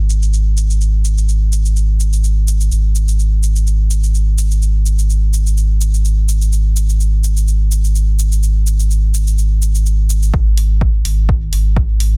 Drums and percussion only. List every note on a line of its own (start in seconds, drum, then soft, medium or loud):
0.10 shaker medium
0.23 shaker soft
0.34 shaker soft
0.57 shaker medium
0.70 shaker soft
0.81 shaker soft
1.05 shaker medium
1.18 shaker soft
1.29 shaker soft
1.53 shaker medium
1.65 shaker soft
1.76 shaker soft
2.00 shaker medium
2.13 shaker soft
2.24 shaker soft
2.48 shaker medium
2.61 shaker soft
2.72 shaker soft
2.96 shaker medium
3.08 shaker soft
3.19 shaker soft
3.43 shaker medium
3.56 shaker soft
3.67 shaker soft
3.91 shaker medium
4.04 shaker soft
4.15 shaker soft
4.38 shaker medium
4.51 shaker soft
4.62 shaker soft
4.86 shaker medium
4.99 shaker soft
5.10 shaker soft
5.34 shaker medium
5.46 shaker soft
5.57 shaker soft
5.81 shaker medium
5.94 shaker soft
6.05 shaker soft
6.29 shaker medium
6.42 shaker soft
6.53 shaker soft
6.76 shaker medium
6.89 shaker soft
7.00 shaker soft
7.24 shaker medium
7.37 shaker soft
7.48 shaker soft
7.72 shaker medium
7.84 shaker soft
7.95 shaker soft
8.19 shaker medium
8.32 shaker soft
8.43 shaker soft
8.67 shaker medium
8.80 shaker soft
8.91 shaker soft
9.15 shaker medium
9.27 shaker soft
9.38 shaker soft
9.62 shaker medium
9.75 shaker soft
9.86 shaker soft
10.10 shaker medium
10.23 shaker soft
10.34 kick loud
10.57 open hi-hat medium
10.81 kick loud
11.05 open hi-hat medium
11.29 kick loud
11.53 open hi-hat medium
11.77 kick loud
12.00 open hi-hat medium